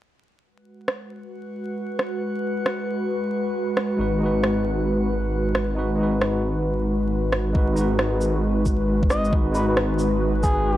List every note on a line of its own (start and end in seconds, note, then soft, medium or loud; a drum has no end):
0.43 7.51 G#3 medium
0.43 7.56 F#4 medium
0.43 7.51 F#4 medium
0.43 7.51 B4 medium
0.43 7.56 F#5 medium
0.88 cross-stick medium
1.99 cross-stick medium
2.66 cross-stick loud
3.77 cross-stick loud
3.97 7.53 G#1 medium
3.97 4.17 G#3 medium
3.97 4.19 D#4 medium
3.97 4.20 F#4 medium
4.01 4.21 B4 medium
4.18 5.73 G#3 medium
4.18 5.75 D#4 medium
4.23 5.76 F#4 medium
4.23 5.77 B4 medium
4.44 cross-stick loud
5.55 cross-stick loud
5.75 5.94 G#3 medium
5.75 5.96 D#4 medium
5.75 5.98 F#4 medium
5.75 5.98 B4 medium
5.95 7.51 G#3 medium
5.95 7.52 D#4 medium
6.00 7.53 F#4 medium
6.00 7.55 B4 medium
6.21 cross-stick loud
7.32 cross-stick loud
7.53 10.77 G#1 medium
7.53 7.72 G#3 medium
7.53 10.77 G#3 medium
7.53 7.74 D#4 medium
7.53 10.77 F#4 medium
7.53 7.76 F#4 medium
7.53 10.77 B4 medium
7.53 kick loud
7.57 7.76 B4 medium
7.73 9.29 G#3 medium
7.73 9.30 D#4 medium
7.73 shaker medium
7.78 9.31 F#4 medium
7.78 9.33 B4 medium
7.99 cross-stick loud
8.21 shaker medium
8.66 kick medium
8.66 shaker medium
9.03 kick loud
9.10 9.34 D#5 medium
9.10 cross-stick loud
9.10 shaker medium
9.25 shaker soft
9.31 9.50 G#3 medium
9.31 9.53 D#4 medium
9.31 9.53 F#4 medium
9.31 9.54 B4 medium
9.31 kick loud
9.51 10.77 G#3 medium
9.51 10.77 D#4 medium
9.51 9.64 B4 medium
9.51 shaker medium
9.57 10.77 F#4 medium
9.57 10.77 B4 medium
9.69 9.74 B4 medium
9.77 cross-stick loud
9.99 shaker medium
10.43 10.77 G#4 medium
10.43 kick loud
10.43 shaker medium